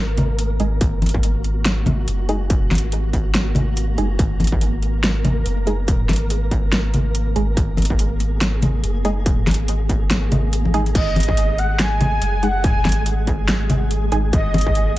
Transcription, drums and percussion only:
0.17 closed hi-hat medium
0.17 low conga medium
0.39 closed hi-hat medium
0.60 closed hi-hat medium
0.81 kick loud
0.81 closed hi-hat medium
1.02 closed hi-hat soft
1.02 high conga medium
1.06 closed hi-hat medium
1.09 closed hi-hat medium
1.14 kick medium
1.23 closed hi-hat medium
1.44 closed hi-hat medium
1.65 snare loud
1.65 closed hi-hat medium
1.86 closed hi-hat soft
1.86 high conga medium
1.86 low conga medium
2.08 closed hi-hat medium
2.29 closed hi-hat medium
2.50 kick loud
2.50 closed hi-hat medium
2.71 snare medium
2.71 closed hi-hat soft
2.71 high conga medium
2.75 closed hi-hat medium
2.78 closed hi-hat medium
2.92 closed hi-hat medium
3.13 kick medium
3.13 closed hi-hat soft
3.35 snare loud
3.35 closed hi-hat medium
3.55 closed hi-hat soft
3.55 low conga medium
3.77 closed hi-hat medium
3.98 closed hi-hat soft
4.19 kick loud
4.19 closed hi-hat medium
4.40 closed hi-hat soft
4.40 high conga medium
4.44 closed hi-hat medium
4.47 closed hi-hat medium
4.52 kick medium
4.61 closed hi-hat medium
4.82 closed hi-hat soft
5.04 snare loud
5.04 closed hi-hat medium
5.24 closed hi-hat medium
5.24 high conga medium
5.24 low conga medium
5.46 closed hi-hat medium
5.67 closed hi-hat medium
5.88 kick loud
5.88 closed hi-hat medium
6.09 snare medium
6.09 closed hi-hat soft
6.09 high conga medium
6.13 closed hi-hat medium
6.16 closed hi-hat medium
6.30 closed hi-hat medium
6.51 kick medium
6.51 closed hi-hat medium
6.72 snare loud
6.72 closed hi-hat medium
6.94 closed hi-hat medium
6.94 low conga medium
7.15 closed hi-hat medium
7.36 closed hi-hat medium
7.57 kick loud
7.57 closed hi-hat medium
7.77 closed hi-hat soft
7.77 high conga medium
7.82 closed hi-hat medium
7.85 closed hi-hat medium
7.90 kick medium
7.99 closed hi-hat medium
8.20 closed hi-hat medium
8.41 snare loud
8.41 closed hi-hat medium
8.62 closed hi-hat medium
8.62 high conga medium
8.62 low conga medium
8.84 closed hi-hat medium
9.05 closed hi-hat medium
9.26 kick loud
9.26 closed hi-hat medium
9.47 snare medium
9.47 closed hi-hat medium
9.47 high conga medium
9.51 closed hi-hat medium
9.54 closed hi-hat medium
9.68 closed hi-hat medium
9.89 kick medium
9.89 closed hi-hat medium
10.10 snare loud
10.10 closed hi-hat medium
10.10 high conga medium
10.32 closed hi-hat medium
10.32 low conga medium
10.53 closed hi-hat medium
10.65 high conga medium
10.74 closed hi-hat medium
10.86 closed hi-hat soft
10.95 kick loud
10.95 closed hi-hat medium
10.95 crash medium
11.16 closed hi-hat medium
11.16 high conga medium
11.20 closed hi-hat medium
11.23 closed hi-hat medium
11.28 kick medium
11.37 closed hi-hat medium
11.58 closed hi-hat medium
11.79 snare loud
11.79 clap medium
11.79 closed hi-hat medium
12.01 closed hi-hat medium
12.01 high conga medium
12.01 low conga medium
12.22 closed hi-hat medium
12.43 closed hi-hat medium
12.64 kick loud
12.64 closed hi-hat medium
12.85 snare medium
12.85 closed hi-hat soft
12.85 high conga medium
12.89 closed hi-hat medium
12.92 closed hi-hat medium
13.06 closed hi-hat medium
13.27 kick medium
13.27 closed hi-hat medium
13.48 snare loud
13.48 clap medium
13.48 closed hi-hat medium
13.70 closed hi-hat medium
13.70 low conga medium
13.91 closed hi-hat medium
14.12 closed hi-hat medium
14.33 kick loud
14.33 closed hi-hat medium
14.54 closed hi-hat soft
14.54 high conga loud
14.58 closed hi-hat medium
14.61 closed hi-hat medium
14.66 kick medium
14.75 closed hi-hat medium

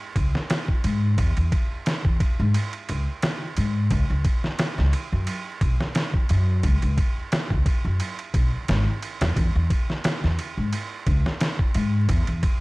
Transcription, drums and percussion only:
0.16 kick medium
0.16 ride medium
0.35 snare soft
0.50 snare loud
0.50 ride medium
0.68 kick medium
0.84 ride medium
1.18 kick medium
1.18 ride medium
1.37 ride soft
1.52 kick medium
1.52 ride medium
1.86 snare loud
1.86 ride medium
2.05 kick medium
2.20 kick medium
2.20 ride medium
2.54 ride medium
2.73 ride soft
2.89 ride medium
3.22 snare loud
3.22 ride medium
3.56 ride medium
3.90 kick loud
3.90 ride medium
4.25 kick medium
4.25 ride medium
4.44 snare soft
4.59 snare loud
4.59 ride medium
4.78 snare soft
4.93 ride medium
5.27 ride medium
5.61 kick medium
5.61 ride medium
5.80 snare soft
5.95 snare loud
5.95 ride medium
6.14 kick medium
6.29 ride medium
6.63 kick loud
6.63 ride medium
6.82 ride soft
6.98 kick medium
6.98 ride medium
7.32 snare loud
7.32 ride medium
7.50 kick medium
7.66 kick medium
7.66 ride medium
8.00 ride medium
8.19 ride soft
8.34 kick medium
8.34 ride medium
8.68 snare loud
8.68 ride medium
9.02 ride medium
9.21 snare loud
9.21 ride medium
9.36 kick loud
9.36 ride medium
9.70 kick medium
9.70 ride medium
9.90 snare soft
10.04 snare loud
10.04 ride medium
10.24 snare soft
10.39 ride medium
10.73 ride medium
11.06 kick medium
11.06 ride medium
11.26 snare soft
11.41 snare loud
11.41 ride medium
11.59 kick medium
11.75 ride medium
12.09 kick loud
12.09 ride medium
12.27 ride soft
12.43 kick medium
12.43 ride medium

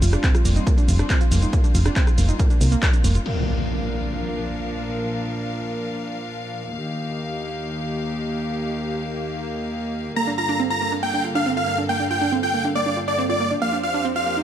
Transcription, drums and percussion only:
0.02 open hi-hat loud
0.02 shaker medium
0.13 cross-stick medium
0.13 closed hi-hat soft
0.13 shaker soft
0.24 kick loud
0.24 clap loud
0.24 closed hi-hat medium
0.24 shaker soft
0.35 cross-stick medium
0.35 closed hi-hat soft
0.35 shaker soft
0.45 open hi-hat loud
0.45 shaker medium
0.56 closed hi-hat soft
0.56 shaker soft
0.67 kick loud
0.67 closed hi-hat medium
0.67 shaker soft
0.78 closed hi-hat soft
0.78 shaker soft
0.89 open hi-hat loud
0.89 shaker medium
0.99 cross-stick medium
0.99 closed hi-hat soft
0.99 shaker soft
1.10 kick loud
1.10 clap loud
1.10 closed hi-hat medium
1.10 shaker soft
1.21 closed hi-hat soft
1.21 shaker soft
1.32 open hi-hat loud
1.32 shaker medium
1.42 closed hi-hat soft
1.42 shaker soft
1.53 kick loud
1.53 closed hi-hat loud
1.53 shaker soft
1.64 closed hi-hat soft
1.64 shaker soft
1.75 open hi-hat loud
1.75 shaker medium
1.86 cross-stick medium
1.86 closed hi-hat soft
1.86 shaker soft
1.96 kick loud
1.96 clap loud
1.96 closed hi-hat medium
1.96 shaker soft
2.07 cross-stick medium
2.07 closed hi-hat soft
2.07 shaker soft
2.18 open hi-hat loud
2.18 shaker medium
2.29 closed hi-hat soft
2.29 shaker soft
2.39 kick loud
2.39 closed hi-hat medium
2.39 shaker soft
2.50 closed hi-hat soft
2.50 shaker soft
2.61 open hi-hat loud
2.61 shaker medium
2.72 closed hi-hat soft
2.72 shaker soft
2.83 kick loud
2.83 clap loud
2.83 closed hi-hat medium
2.83 shaker soft
2.93 closed hi-hat soft
2.93 shaker soft
3.04 open hi-hat loud
3.04 shaker medium
3.15 closed hi-hat soft
3.15 shaker soft
3.26 crash medium

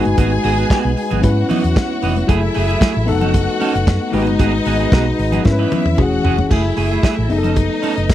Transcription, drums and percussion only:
0.05 closed hi-hat soft
0.05 high conga medium
0.17 kick loud
0.17 closed hi-hat medium
0.17 cowbell medium
0.17 muted conga medium
0.44 open hi-hat medium
0.58 closed hi-hat soft
0.70 kick loud
0.70 snare loud
0.70 closed hi-hat medium
0.70 cowbell medium
0.70 high conga medium
0.97 open hi-hat medium
1.11 closed hi-hat medium
1.11 low conga medium
1.23 kick loud
1.23 closed hi-hat medium
1.23 cowbell medium
1.23 muted conga medium
1.50 open hi-hat medium
1.50 muted conga medium
1.50 low conga loud
1.64 closed hi-hat soft
1.76 kick loud
1.76 snare loud
1.76 closed hi-hat medium
1.76 cowbell medium
1.76 high conga medium
2.02 open hi-hat medium
2.16 closed hi-hat soft
2.16 high conga medium
2.29 kick loud
2.29 closed hi-hat medium
2.29 cowbell medium
2.29 muted conga medium
2.54 open hi-hat medium
2.54 muted conga soft
2.69 closed hi-hat soft
2.81 kick loud
2.81 snare loud
2.81 closed hi-hat medium
2.81 cowbell medium
2.81 high conga medium
3.08 open hi-hat medium
3.22 closed hi-hat soft
3.22 low conga medium
3.34 kick medium
3.34 closed hi-hat medium
3.34 cowbell medium
3.34 muted conga medium
3.61 open hi-hat medium
3.61 muted conga medium
3.75 closed hi-hat medium
3.87 kick loud
3.87 snare loud
3.87 closed hi-hat medium
3.87 cowbell medium
3.87 high conga medium
4.13 open hi-hat medium
4.27 closed hi-hat soft
4.27 high conga medium
4.39 kick loud
4.39 closed hi-hat medium
4.39 cowbell medium
4.39 muted conga medium
4.65 open hi-hat medium
4.65 muted conga soft
4.80 closed hi-hat soft
4.92 kick loud
4.92 snare loud
4.92 closed hi-hat medium
4.92 cowbell medium
4.92 high conga medium
5.19 open hi-hat soft
5.33 closed hi-hat medium
5.33 low conga medium
5.45 kick loud
5.45 snare medium
5.45 cowbell medium
5.45 muted conga medium
5.72 high tom medium
5.72 muted conga medium
5.72 low conga medium
5.86 high tom medium
5.98 kick loud
5.98 mid tom medium
5.98 cowbell medium
5.98 high conga medium
6.25 floor tom loud
6.38 floor tom medium
6.38 high conga medium
6.51 kick loud
6.51 crash medium
6.51 cowbell medium
6.51 muted conga medium
6.77 open hi-hat medium
6.91 closed hi-hat soft
7.03 kick loud
7.03 snare medium
7.03 closed hi-hat medium
7.03 cowbell medium
7.03 high conga medium
7.30 open hi-hat medium
7.44 closed hi-hat soft
7.44 low conga medium
7.56 kick loud
7.56 closed hi-hat medium
7.56 cowbell medium
7.56 muted conga medium
7.83 open hi-hat medium
7.83 muted conga medium
7.97 closed hi-hat soft
8.09 kick loud
8.09 snare loud
8.09 closed hi-hat medium
8.09 cowbell medium
8.09 high conga medium

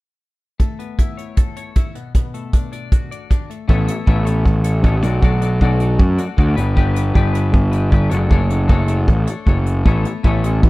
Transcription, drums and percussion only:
0.59 kick medium
0.59 closed hi-hat medium
0.79 closed hi-hat soft
0.99 kick medium
0.99 closed hi-hat medium
1.18 closed hi-hat medium
1.37 kick medium
1.37 closed hi-hat medium
1.56 closed hi-hat medium
1.75 kick medium
1.75 closed hi-hat medium
1.95 closed hi-hat soft
2.15 kick medium
2.15 closed hi-hat medium
2.34 closed hi-hat soft
2.53 kick medium
2.53 closed hi-hat medium
2.72 closed hi-hat soft
2.92 kick medium
2.92 closed hi-hat medium
3.12 closed hi-hat medium
3.31 kick medium
3.31 closed hi-hat medium
3.50 closed hi-hat soft
3.69 kick medium
3.88 closed hi-hat medium
4.07 kick medium
4.26 closed hi-hat medium
4.46 kick medium
4.64 closed hi-hat medium
4.84 kick medium
5.03 closed hi-hat medium
5.23 kick medium
5.42 closed hi-hat medium
5.61 kick medium
5.80 closed hi-hat medium
5.99 kick medium
6.18 closed hi-hat medium
6.38 kick medium
6.57 closed hi-hat medium
6.77 kick medium
6.96 closed hi-hat medium
7.15 kick medium
7.35 closed hi-hat medium
7.54 kick medium
7.72 closed hi-hat medium
7.92 kick medium
8.11 closed hi-hat medium
8.31 kick loud
8.50 closed hi-hat medium
8.69 kick medium
8.88 closed hi-hat medium
9.08 kick medium
9.27 closed hi-hat medium
9.47 kick medium
9.66 closed hi-hat medium
9.86 kick medium
10.05 closed hi-hat medium
10.24 kick medium
10.44 closed hi-hat medium
10.63 kick loud

